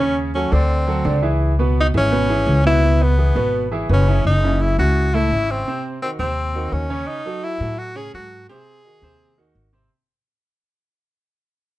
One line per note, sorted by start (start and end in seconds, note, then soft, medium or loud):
0.00 0.47 D#2 medium
0.00 0.28 C#3 medium
0.00 0.17 C#4 medium
0.00 0.28 C#4 medium
0.00 0.28 C#5 medium
0.35 0.49 F#3 medium
0.35 0.54 C#4 medium
0.35 0.50 F#4 medium
0.35 0.50 A4 medium
0.52 1.02 D2 medium
0.52 0.81 D3 medium
0.52 1.23 C4 medium
0.52 0.81 D4 medium
0.52 0.82 D5 medium
0.87 1.02 F#3 medium
0.87 1.02 F#4 medium
0.87 1.02 A4 medium
1.05 1.88 C#2 medium
1.05 1.20 D3 medium
1.05 1.20 D4 medium
1.05 1.20 D5 medium
1.22 1.52 E3 medium
1.22 1.52 E4 medium
1.22 1.52 G#4 medium
1.59 1.88 B2 medium
1.59 1.88 B3 medium
1.59 1.88 B4 medium
1.80 1.88 D#4 medium
1.94 2.44 G#1 medium
1.94 2.09 E3 medium
1.94 2.63 C#4 loud
1.94 2.09 E4 medium
1.94 2.09 G#4 medium
2.12 2.26 B2 medium
2.12 2.26 B3 medium
2.12 2.27 B4 medium
2.29 2.59 E3 medium
2.29 2.59 E4 medium
2.29 2.59 G#4 medium
2.46 3.30 C#2 loud
2.65 2.80 B2 medium
2.65 2.80 B3 medium
2.65 3.04 E4 loud
2.65 2.80 B4 medium
2.83 3.12 B2 medium
2.83 3.12 B3 medium
2.83 3.12 B4 medium
3.02 3.73 B3 medium
3.18 3.33 E3 medium
3.18 3.33 E4 medium
3.18 3.33 G#4 medium
3.35 3.85 G#1 medium
3.35 3.65 B2 medium
3.35 3.65 B3 medium
3.35 3.65 B4 medium
3.71 3.86 E3 medium
3.71 3.86 E4 medium
3.71 3.87 G#4 medium
3.89 4.21 F#1 medium
3.89 4.04 B2 medium
3.89 4.04 B3 medium
3.89 4.24 C#4 medium
3.89 4.05 B4 medium
4.08 4.22 C#3 medium
4.08 4.22 C#4 medium
4.08 4.22 E4 medium
4.25 4.74 F#1 medium
4.25 4.63 D#4 medium
4.43 4.72 C#3 medium
4.43 4.73 C#4 medium
4.43 4.73 E4 medium
4.61 4.78 E4 medium
4.78 5.28 C#2 loud
4.78 5.07 C#3 medium
4.78 5.07 C#4 medium
4.78 5.07 E4 medium
4.78 5.16 F#4 medium
5.14 5.28 A2 medium
5.14 5.29 A3 medium
5.14 5.52 E4 loud
5.14 5.29 A4 medium
5.31 5.62 G#1 medium
5.31 5.61 C#3 medium
5.31 5.61 C#4 medium
5.31 5.61 E4 medium
5.51 5.85 C4 medium
5.68 5.96 C3 medium
5.68 5.96 C4 medium
5.68 5.97 C5 medium
6.02 6.17 D#3 medium
6.02 6.10 C4 medium
6.02 6.17 D#4 medium
6.02 6.17 F#4 medium
6.19 6.69 D#2 medium
6.19 6.49 C3 medium
6.19 6.74 C4 medium
6.19 6.49 C4 medium
6.19 6.49 C5 medium
6.55 6.84 D#3 medium
6.55 6.84 D#4 medium
6.55 6.84 F#4 medium
6.72 7.04 D#2 medium
6.72 7.09 C#4 medium
6.90 7.19 C#3 medium
6.90 7.19 C#4 medium
6.90 7.19 C#5 medium
7.08 7.45 D#4 loud
7.26 7.55 F#3 medium
7.26 7.55 F#4 medium
7.26 7.55 A4 medium
7.43 7.80 E4 loud
7.60 8.10 A2 medium
7.60 7.90 F#3 medium
7.60 7.90 F#4 medium
7.60 7.90 A4 medium
7.78 7.98 F#4 loud
7.95 8.10 C#3 medium
7.95 8.11 C#4 medium
7.95 8.14 G#4 loud
7.95 8.11 C#5 medium
8.14 8.45 G#2 medium
8.14 8.43 F#3 medium
8.14 8.43 F#4 medium
8.14 8.47 F#4 loud
8.14 8.44 A4 medium
8.49 8.79 C3 medium
8.49 8.79 C4 medium
8.49 9.52 G#4 loud
8.49 8.79 C5 medium
8.85 9.00 D#3 medium
8.85 9.00 D#4 medium
8.85 9.00 F#4 medium
9.02 9.52 D#2 medium
9.02 9.32 C3 medium
9.02 9.32 C4 medium
9.02 9.32 C5 medium
9.38 9.67 D#3 medium
9.38 9.67 D#4 medium
9.38 9.67 F#4 medium
9.55 9.87 G#1 medium
9.73 9.88 C3 medium
9.73 9.88 C4 medium
9.73 9.88 C5 medium